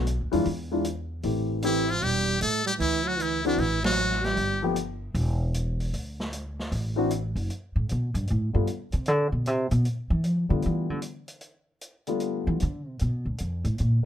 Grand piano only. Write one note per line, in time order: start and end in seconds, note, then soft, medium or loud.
0.32 0.44 E3 medium
0.32 0.45 G#3 medium
0.32 0.45 D4 medium
0.32 0.45 F4 medium
0.72 0.84 E3 medium
0.72 0.84 G#3 soft
0.72 0.84 D4 medium
0.72 0.84 F4 medium
1.23 1.61 E3 soft
1.23 1.62 A3 soft
1.23 1.62 C4 soft
1.23 1.62 G4 medium
1.63 1.86 E3 medium
1.63 1.86 A3 medium
1.63 1.87 C4 medium
1.63 1.87 G4 medium
3.45 3.57 E3 medium
3.45 3.57 C4 medium
3.45 3.57 D4 medium
3.45 3.58 F#4 medium
4.62 4.74 F3 medium
4.62 4.75 A3 medium
4.62 4.75 B3 medium
4.62 4.75 G4 medium
6.96 7.09 E3 medium
6.96 7.09 C4 medium
6.96 7.09 D4 medium
6.96 7.10 F#4 medium
8.53 8.66 D3 soft
8.53 8.66 G3 soft
8.53 8.66 A3 soft
8.53 8.66 B3 soft
8.53 8.66 F4 medium
10.49 11.00 D3 soft
10.49 11.00 G3 soft
10.49 11.00 A3 soft
10.49 11.00 B3 soft
10.49 11.00 F4 medium
12.07 12.57 D3 medium
12.07 12.57 G3 medium
12.07 12.57 A3 medium
12.07 12.58 B3 soft
12.07 12.58 F4 medium